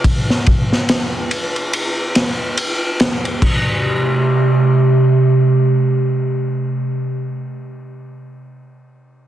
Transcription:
0.04 kick, ride
0.30 snare
0.46 kick, ride
0.73 snare
0.89 snare, ride
1.31 ride
1.56 ride
1.73 ride
2.15 snare, ride
2.57 ride
3.00 snare, ride
3.25 ride
3.42 C3 A3 G4, kick, crash

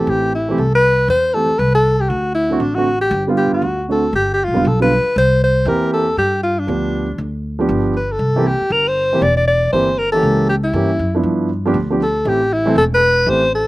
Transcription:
Already playing: E3 A3 C4 A4
0.00 G4
0.07 A1 G4
0.35 E4
0.49 E3 A3 C4 G4
0.58 C2 A4
0.75 B4
1.08 E2 C5
1.34 E3 A3 C4 G4 A4
1.50 muted upright bass stroke
1.59 C2 B4
1.74 A4
2.00 G4
2.09 D2 F#4
2.34 E4
2.50 D3 A3 C4 F#4
2.60 A1 D4
2.75 D3 A3 C4 F#4
3.01 G4
3.11 G1
3.27 D3 G3 B3 F4
3.37 G4
3.52 F#4, muted upright bass stroke
3.62 D2
3.89 D3 A3 C4 F#4 A4
4.13 G1 G4
4.33 G4
4.44 B1 F4
4.53 F1 D3 G3 B3 F4
4.65 B1 A4
4.80 D3 G3 B3 F4 B4
5.04 muted upright bass stroke
5.16 C2 C5
5.43 C5
5.65 E2 E3 A#3 C4 G4 A#4
5.93 A4
6.17 G2 G4
6.43 F4
6.59 D4
6.67 D2 F3 B3 D4 G4
7.18 D2
7.59 F3 B3 D4 G4
7.69 G1
7.97 B4
8.12 A4
8.19 C2
8.36 E3 A#3 C4 G4
8.46 G4
8.61 muted upright bass stroke
8.70 G1 A#4
8.88 C5
9.13 E3 A#3 C4 G4
9.21 E1 D5
9.37 D5
9.48 D5
9.72 G1 E3 A#3 C4 G4 C5
9.98 A#4
10.12 E3 A#3 C#4 G4 A4
10.23 C#2
10.49 G4
10.64 E4
10.73 G2 E3 A#3 C#4 G4
10.99 F#2
11.15 F3 B3 D4 E4
11.23 G2
11.65 F3 B3 D4 G4
11.74 D2
11.90 F3 B3 D4 G4
12.03 A4
12.25 A1 E3 A3 C4 G4
12.53 E4
12.66 E3 A3 C4 A4
12.76 E1 A4
12.94 B4
13.26 A1 E3 A3 C4 G4 C5
13.54 A4

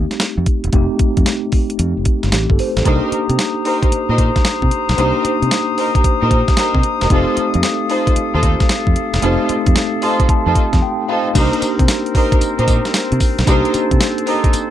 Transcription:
Already playing: A3 C4 D#4 G4
0.11 snare, closed hi-hat
0.20 snare, closed hi-hat
0.38 F2
0.46 kick, closed hi-hat
0.64 E1, closed hi-hat
0.73 F1 A3 C4 D#4 G4, kick, closed hi-hat
0.99 muted fingered electric bass stroke, kick, closed hi-hat
1.17 F2, kick, closed hi-hat
1.26 snare, closed hi-hat
1.52 kick, open hi-hat
1.70 closed hi-hat
1.79 F2, closed hi-hat
1.97 F1
2.05 kick, closed hi-hat
2.23 G1, snare, closed hi-hat
2.32 A1 G4, snare, closed hi-hat
2.50 G1 A4, kick
2.59 C5, open hi-hat
2.77 A1 A4, snare, closed hi-hat
2.85 C2 A#3 D4 D#4 G4 A#4 C5 A#5 D#6, kick, closed hi-hat
3.12 muted fingered electric bass stroke, closed hi-hat
3.29 C3, closed hi-hat
3.39 snare, closed hi-hat
3.65 D#4 G4 A#4 C5, open hi-hat
3.83 kick, closed hi-hat
3.92 muted fingered electric bass stroke, closed hi-hat
4.09 A#2 D#4 G4 A#4 C5
4.18 kick, closed hi-hat
4.36 kick, snare, closed hi-hat
4.45 snare, closed hi-hat
4.62 C3, kick
4.71 closed hi-hat
4.89 B1, snare, closed hi-hat
4.97 C2 A#3 D4 D#4 G4 A#4 C5, closed hi-hat
5.25 muted fingered electric bass stroke, closed hi-hat
5.42 C3, closed hi-hat
5.51 snare, closed hi-hat
5.78 D#4 G4 A#4 C5, open hi-hat
5.95 kick, closed hi-hat
6.04 muted fingered electric bass stroke, kick, closed hi-hat
6.21 A#2 D#4 G4 A#4 C5
6.31 kick, closed hi-hat
6.48 kick, snare, closed hi-hat
6.57 D#4 G4 A#4 C5, snare, closed hi-hat
6.75 C3, kick
6.83 closed hi-hat
7.01 E1 D#4 G4 A#4 C5, snare, closed hi-hat
7.10 F1 A3 C4 D#4 F4 G4 A4 C5 F5, kick, closed hi-hat
7.37 muted fingered electric bass stroke, closed hi-hat
7.54 F2, closed hi-hat
7.63 snare, closed hi-hat
7.89 D#4 F4 A4 C5, open hi-hat
8.07 kick, closed hi-hat
8.16 muted fingered electric bass stroke, closed hi-hat
8.34 D#2 D#4 F4 A4 C5
8.43 kick, closed hi-hat
8.60 kick, snare, closed hi-hat
8.69 snare, closed hi-hat
8.87 F2, kick
8.96 closed hi-hat
9.13 E1, snare, closed hi-hat
9.22 F1 A3 C4 D#4 F4 G4 A4 C5, closed hi-hat
9.49 muted fingered electric bass stroke, closed hi-hat
9.66 F2, kick, closed hi-hat
9.76 snare, closed hi-hat
10.02 D#4 F4 A4 C5 C6, open hi-hat
10.20 kick, closed hi-hat
10.29 A5, kick, closed hi-hat
10.46 F2 D#4 F4 A4 C5
10.55 kick, closed hi-hat
10.73 F2, kick, snare, closed hi-hat
10.82 G5
11.08 D#4 F4 A4 C5 F5
11.34 C2 A#3 C4 D4 D#4 G4 A#4 C5, kick, closed hi-hat, crash, tambourine
11.53 closed hi-hat
11.62 muted fingered electric bass stroke, closed hi-hat, tambourine
11.79 C3, kick, closed hi-hat
11.88 snare, closed hi-hat, tambourine
12.06 closed hi-hat
12.14 D#4 G4 A#4 C5, kick, open hi-hat
12.32 kick, closed hi-hat
12.41 muted fingered electric bass stroke, closed hi-hat, tambourine
12.58 A#2 D#4 G4 A#4 C5, closed hi-hat
12.68 kick, closed hi-hat, tambourine
12.85 snare, closed hi-hat
12.94 snare, closed hi-hat, tambourine
13.12 C3, closed hi-hat
13.20 kick, open hi-hat, tambourine
13.38 B1, snare, closed hi-hat
13.46 C2 A#3 D4 D#4 G4 A4 A#4 C5, kick, closed hi-hat, tambourine
13.65 closed hi-hat
13.74 muted fingered electric bass stroke, closed hi-hat, tambourine
13.91 C3, kick, closed hi-hat
14.00 snare, closed hi-hat, tambourine
14.18 closed hi-hat
14.26 D#4 G4 A#4 C5, open hi-hat
14.44 kick, closed hi-hat
14.53 muted fingered electric bass stroke, closed hi-hat, tambourine

